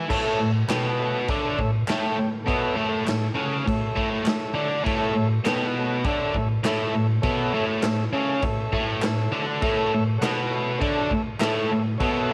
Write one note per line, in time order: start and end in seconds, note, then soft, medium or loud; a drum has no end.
0.09 0.39 A2 medium
0.09 0.39 A3 loud
0.09 0.51 A4 loud
0.09 0.51 C#5 loud
0.09 0.52 E5 loud
0.09 kick loud
0.09 crash loud
0.09 crash medium
0.40 0.64 A2 medium
0.69 1.28 B2 medium
0.69 1.28 B3 loud
0.69 0.91 A4 medium
0.69 0.90 C#5 medium
0.69 0.90 G5 medium
0.69 snare loud
0.69 clap medium
0.69 crash medium
0.99 1.20 A4 medium
0.99 1.21 C#5 medium
0.99 1.20 E5 medium
1.28 1.58 D3 medium
1.28 1.58 D4 loud
1.28 1.71 A4 medium
1.28 1.71 C#5 medium
1.28 1.71 E5 loud
1.28 kick loud
1.28 crash medium
1.59 1.83 A2 medium
1.59 kick medium
1.87 2.17 A2 medium
1.87 2.18 A3 loud
1.87 2.30 A4 medium
1.87 2.30 C#5 medium
1.87 2.30 G5 medium
1.87 snare loud
1.87 clap loud
1.87 crash medium
2.18 2.42 A2 medium
2.44 2.76 B2 medium
2.44 2.77 B3 loud
2.44 2.88 A4 loud
2.44 2.89 C#5 loud
2.44 2.89 E5 loud
2.44 kick loud
2.49 crash medium
2.76 3.04 A2 medium
2.76 3.06 A3 medium
3.06 3.30 A2 medium
3.06 3.28 A4 medium
3.06 3.28 C#5 medium
3.06 3.28 E5 medium
3.06 snare loud
3.06 clap medium
3.06 crash medium
3.35 3.65 C#3 medium
3.35 3.65 C#4 medium
3.35 3.57 A4 medium
3.35 3.58 C#5 medium
3.35 3.58 F#5 medium
3.66 3.90 A2 medium
3.66 4.09 A4 medium
3.66 4.10 C#5 medium
3.66 4.10 E5 medium
3.66 kick loud
3.66 crash medium
3.96 4.23 A2 medium
3.96 4.26 A3 medium
3.96 kick medium
4.24 4.49 A2 medium
4.24 4.69 A4 medium
4.24 snare loud
4.24 clap medium
4.24 crash medium
4.28 4.69 C#5 medium
4.28 4.69 E5 medium
4.54 4.83 D3 medium
4.54 4.84 D4 loud
4.84 5.14 A2 loud
4.84 5.14 A3 loud
4.84 5.28 A4 loud
4.84 5.28 C#5 loud
4.84 5.29 E5 loud
4.84 kick loud
4.84 crash medium
5.15 5.39 A2 medium
5.45 6.04 B2 medium
5.45 6.04 B3 loud
5.45 5.67 A4 medium
5.45 5.67 C#5 medium
5.45 5.67 G5 medium
5.45 snare loud
5.45 clap medium
5.45 crash medium
5.78 5.98 A4 medium
5.78 5.98 C#5 medium
5.78 5.98 F#5 medium
6.04 6.34 D3 medium
6.04 6.35 D4 loud
6.04 6.48 A4 medium
6.04 6.49 C#5 medium
6.04 6.48 E5 loud
6.04 kick loud
6.04 crash medium
6.34 6.59 A2 medium
6.34 kick medium
6.63 6.93 A2 medium
6.63 6.94 A3 loud
6.63 7.07 A4 medium
6.63 7.07 C#5 medium
6.63 7.07 E5 loud
6.63 snare loud
6.63 clap loud
6.63 crash medium
6.95 7.19 A2 medium
7.22 7.53 B2 loud
7.22 7.54 B3 loud
7.22 7.65 A4 loud
7.22 7.65 C#5 loud
7.22 7.66 E5 loud
7.22 kick loud
7.22 crash medium
7.53 7.82 A2 medium
7.53 7.83 A3 loud
7.82 8.07 A2 medium
7.82 8.04 A4 medium
7.82 8.05 C#5 medium
7.82 8.05 E5 medium
7.82 snare loud
7.82 clap loud
7.82 crash medium
8.13 8.42 C#3 medium
8.13 8.43 C#4 medium
8.13 8.35 A4 medium
8.13 8.34 C#5 medium
8.13 8.35 E5 medium
8.42 8.67 A2 medium
8.42 8.86 A4 medium
8.42 8.85 C#5 medium
8.42 8.86 E5 medium
8.42 kick loud
8.42 crash medium
8.72 9.02 A2 medium
8.72 9.02 A3 loud
8.72 kick medium
9.02 9.27 A2 medium
9.02 9.46 A4 medium
9.02 9.45 C#5 medium
9.02 9.46 E5 medium
9.02 snare loud
9.02 clap medium
9.02 crash medium
9.32 9.61 D3 medium
9.32 9.62 D4 loud
9.61 9.92 A2 medium
9.61 9.92 A3 loud
9.61 10.04 A4 loud
9.61 10.04 C#5 loud
9.61 10.04 E5 loud
9.61 kick loud
9.61 crash medium
9.94 10.17 A2 medium
10.18 10.41 A4 medium
10.18 10.41 C#5 medium
10.18 10.42 F#5 medium
10.22 10.80 B2 medium
10.22 10.81 B3 medium
10.22 snare loud
10.22 clap loud
10.22 crash medium
10.50 10.72 A4 medium
10.50 10.73 C#5 medium
10.50 10.73 E5 medium
10.78 11.10 D3 medium
10.78 11.22 A4 medium
10.78 11.22 C#5 medium
10.78 11.22 E5 loud
10.78 kick loud
10.78 crash medium
10.82 11.11 D4 loud
11.10 11.35 A2 medium
11.10 kick medium
11.40 11.70 A2 medium
11.40 11.70 A3 loud
11.40 11.83 A4 medium
11.40 11.83 C#5 medium
11.40 11.83 E5 medium
11.40 snare loud
11.40 clap loud
11.40 crash medium
11.72 11.96 A2 medium
11.98 12.30 B2 loud
11.98 12.30 B3 loud
11.98 12.33 A4 loud
11.98 12.33 C#5 loud
11.98 12.33 E5 loud
11.98 kick loud
11.98 crash medium